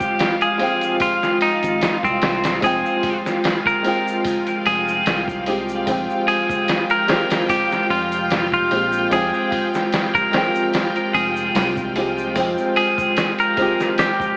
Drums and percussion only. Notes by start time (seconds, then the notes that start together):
0.01 kick, shaker
0.19 snare, open hi-hat, shaker
0.41 closed hi-hat, shaker
0.59 open hi-hat
0.81 closed hi-hat, shaker
1.00 kick, open hi-hat, shaker
1.23 snare, shaker
1.41 open hi-hat
1.63 closed hi-hat, shaker
1.81 snare, open hi-hat, shaker
2.03 kick, shaker
2.22 snare, open hi-hat
2.44 snare, open hi-hat, shaker
2.62 kick, open hi-hat, shaker
2.86 shaker
3.03 kick, open hi-hat
3.26 snare, shaker
3.44 snare, open hi-hat, shaker
3.66 kick, shaker
3.85 open hi-hat
4.08 shaker
4.25 kick, open hi-hat, shaker
4.47 closed hi-hat, shaker
4.66 open hi-hat
4.88 shaker
5.06 snare, open hi-hat, shaker
5.28 kick, shaker
5.46 open hi-hat
5.69 shaker
5.87 kick, open hi-hat, shaker
6.10 shaker
6.28 open hi-hat
6.49 kick, shaker
6.68 snare, open hi-hat, shaker
6.90 closed hi-hat, shaker
7.08 snare, open hi-hat
7.30 snare, open hi-hat, shaker
7.49 kick, open hi-hat, shaker
7.71 snare, shaker
7.90 open hi-hat
8.12 closed hi-hat, shaker
8.30 snare, open hi-hat, shaker
8.52 kick, shaker
8.71 open hi-hat
8.93 shaker
9.11 kick, open hi-hat, shaker
9.34 shaker
9.52 kick, open hi-hat
9.74 snare, shaker
9.92 snare, open hi-hat, shaker
10.14 kick, shaker
10.33 snare, open hi-hat
10.55 shaker
10.74 snare, open hi-hat, shaker
10.96 closed hi-hat, shaker
11.14 open hi-hat
11.37 shaker
11.55 snare, open hi-hat, shaker
11.77 kick, shaker
11.96 open hi-hat
12.18 shaker
12.36 kick, open hi-hat, shaker
12.58 shaker
12.76 open hi-hat
12.98 kick, shaker
13.17 snare, open hi-hat, shaker
13.38 closed hi-hat, shaker
13.57 kick, open hi-hat
13.80 snare, shaker
13.98 snare, open hi-hat, shaker
14.20 kick, shaker